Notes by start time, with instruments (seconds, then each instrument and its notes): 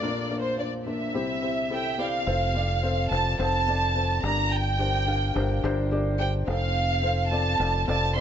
Already playing: violin section D5
0.02 felt piano A#1 A#2 A#3 D4 F4 A#4
0.30 felt piano A#3 D4 F4 A#4
0.41 violin section C5
0.58 felt piano A#3 D4 F4 C5, violin section D5
0.86 felt piano A#3 D4 F4 A#4, violin section E5
1.14 felt piano C2 C3 C4 E4 G4 C5
1.42 felt piano C4 E4 G4 C5
1.70 felt piano C4 E4 G4 A4 E5, violin section G5
1.98 felt piano C4 E4 G4 D5, violin section F5
2.26 fingered electric bass F1, felt piano C4 F4 A4 C5
2.54 felt piano C4 F4 A4 D5
2.83 felt piano C4 F4 A4 C5
3.11 fingered electric bass F1, felt piano C4 F4 A4 C5, violin section A5
3.39 fingered electric bass F1, felt piano C4 F4 A4 C5, violin section A5
3.68 felt piano C4 F4 A4 D5
3.95 felt piano C4 F4 A4 C5
4.23 fingered electric bass G1, felt piano G2 D4 G4 A#4 D5, violin section A#5
4.52 violin section G5
4.79 felt piano D4 G4 A#4 C5
5.06 felt piano D4 G4 A#4 F5
5.35 fingered electric bass G1, felt piano D4 G4 A#4 C5
5.63 fingered electric bass G1, felt piano D4 G4 A#4 C5
5.91 felt piano D4 G4 A#4 D5
6.19 felt piano D4 G4 A#4 C5, violin section G5
6.47 fingered electric bass F1, felt piano C4 F4 A4 C5, violin section F5
7.03 felt piano C4 F4 A4 C5
7.31 felt piano C4 F4 A4 D5, violin section A5
7.59 fingered electric bass F1, felt piano C4 F4 A4 D5
7.87 fingered electric bass F1, felt piano C4 F4 A4 D5, violin section A5
8.16 felt piano C4 F4 A4 D5, violin section C6